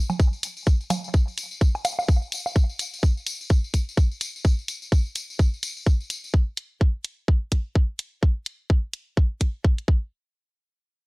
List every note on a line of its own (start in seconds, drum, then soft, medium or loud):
0.10 tambourine soft
0.10 low conga medium
0.10 high woodblock medium
0.20 kick loud
0.20 tambourine medium
0.33 tambourine soft
0.43 closed hi-hat medium
0.43 tambourine medium
0.57 tambourine soft
0.66 kick loud
0.66 tambourine soft
0.81 tambourine soft
0.90 closed hi-hat medium
0.90 tambourine medium
0.90 low conga medium
0.90 high woodblock medium
0.90 low woodblock medium
1.04 tambourine soft
1.14 kick loud
1.14 tambourine soft
1.28 tambourine soft
1.38 closed hi-hat medium
1.38 tambourine medium
1.51 tambourine soft
1.61 kick loud
1.61 tambourine medium
1.75 tambourine soft
1.75 high woodblock medium
1.85 closed hi-hat medium
1.85 tambourine medium
1.85 low woodblock medium
1.99 tambourine soft
1.99 low woodblock medium
2.08 kick loud
2.08 tambourine medium
2.22 tambourine soft
2.32 closed hi-hat medium
2.32 tambourine medium
2.46 tambourine soft
2.46 low woodblock medium
2.56 kick loud
2.56 tambourine soft
2.69 tambourine soft
2.79 closed hi-hat medium
2.79 tambourine medium
2.93 tambourine soft
3.03 kick loud
3.03 tambourine medium
3.17 tambourine soft
3.27 closed hi-hat medium
3.27 tambourine medium
3.41 tambourine soft
3.50 kick loud
3.50 tambourine medium
3.64 tambourine soft
3.74 kick medium
3.74 closed hi-hat medium
3.74 tambourine medium
3.89 tambourine soft
3.97 kick loud
3.97 tambourine medium
4.12 tambourine soft
4.21 closed hi-hat medium
4.21 tambourine medium
4.36 tambourine soft
4.44 kick loud
4.44 tambourine medium
4.59 tambourine soft
4.68 closed hi-hat medium
4.68 tambourine medium
4.82 tambourine soft
4.92 kick loud
4.92 tambourine soft
5.05 tambourine soft
5.15 closed hi-hat medium
5.15 tambourine medium
5.30 tambourine soft
5.39 kick loud
5.39 tambourine soft
5.54 tambourine soft
5.63 closed hi-hat medium
5.63 tambourine medium
5.77 tambourine soft
5.86 kick loud
5.86 tambourine soft
6.00 tambourine soft
6.10 closed hi-hat medium
6.10 tambourine medium
6.24 tambourine soft
6.34 kick loud
6.57 closed hi-hat medium
6.81 kick loud
7.04 closed hi-hat medium
7.28 kick loud
7.52 kick medium
7.52 closed hi-hat medium
7.75 kick loud
7.99 closed hi-hat medium
8.23 kick loud
8.46 closed hi-hat medium
8.70 kick loud
8.93 closed hi-hat medium
9.17 kick loud
9.41 kick medium
9.41 closed hi-hat medium
9.64 kick loud
9.78 closed hi-hat soft
9.88 kick loud